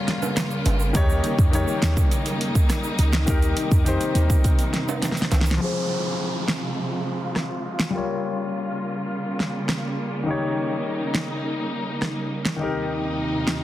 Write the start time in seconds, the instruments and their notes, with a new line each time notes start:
Already playing: string section C#3 G3 A#3 F4, grand piano G3 F4 A#4 C#5
0.08 snare, closed hi-hat
0.22 high timbale, shaker
0.36 finger snap, cross-stick, snare, closed hi-hat, high timbale, shaker
0.51 shaker
0.66 808-style bass G1, closed hi-hat, high timbale, shaker
0.80 shaker
0.93 808-style bass D#2, grand piano D#3 D#4 G4 C#5, string section D#4, kick, closed hi-hat, shaker
1.10 shaker
1.24 closed hi-hat, shaker
1.39 808-style bass F2, kick, shaker
1.51 grand piano D#3 D#4 G4 C#5, closed hi-hat, shaker
1.68 shaker
1.82 808-style bass D#2, finger snap, snare, closed hi-hat, shaker
1.97 kick, shaker
2.11 closed hi-hat, shaker
2.26 closed hi-hat, shaker
2.41 closed hi-hat
2.55 kick, shaker
2.70 cross-stick, snare, closed hi-hat, shaker
2.84 shaker
2.98 808-style bass C#2, closed hi-hat, shaker
3.13 finger snap, snare, shaker
3.26 808-style bass D#2, string section C3, grand piano D#3 D#4 G4 A#4, kick, closed hi-hat, shaker
3.42 closed hi-hat, shaker
3.57 closed hi-hat, shaker
3.71 808-style bass F2, kick, shaker
3.84 grand piano D#3 D#4 G4 C5, closed hi-hat, shaker
4.01 closed hi-hat, shaker
4.15 808-style bass D#2, closed hi-hat, shaker
4.30 kick, shaker
4.44 kick, closed hi-hat, shaker
4.59 closed hi-hat, shaker
4.74 snare, closed hi-hat
4.89 high timbale, shaker
5.02 snare, closed hi-hat, high timbale, shaker
5.12 snare
5.17 closed hi-hat, shaker
5.22 snare
5.32 808-style bass C2, snare, closed hi-hat, high timbale, shaker
5.41 snare
5.46 shaker
5.51 snare
5.57 string section C3 F3 G#3 F4, grand piano F3 F4, downlifter
5.62 grand piano G#4 C5
6.48 finger snap, snare
7.36 cross-stick, snare
7.80 finger snap, snare
7.90 string section C#3 G3 A#3, grand piano G3 F4
7.95 grand piano A#4 C#5
9.40 snare
9.69 finger snap, cross-stick, snare
10.23 grand piano D#3 D#4, string section D#4
10.28 grand piano G4 C#5
11.15 finger snap, snare
12.02 cross-stick, snare
12.45 finger snap, snare
12.56 string section D#2 C3 D#4, grand piano D#3 D#4, swell
12.61 grand piano G4 A#4
13.47 finger snap, snare